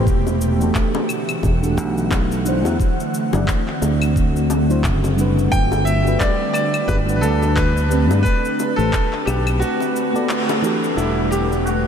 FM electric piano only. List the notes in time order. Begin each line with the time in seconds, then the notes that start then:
0.59 E3 D4 F#4 G4
0.63 A4
1.61 E3 D4 F#4 G4
1.66 A4
2.44 F#3 D4 E4
2.48 C5
3.33 F#3 D4 E4 D5
4.69 F#3 D4 E4 C5
5.16 F#3 G3 D4
5.21 B4
6.04 G3 D4 F#4
6.08 B4
7.06 G3 D4 F#4
7.10 B4
7.88 A3 G4 B4
7.93 C4
8.77 A3 G4 B4 C5
10.13 B3 F#4 A4 D5
10.62 E3 D4 F#4 G4 A4
10.95 E3 G3 D4 F#5
11.00 A4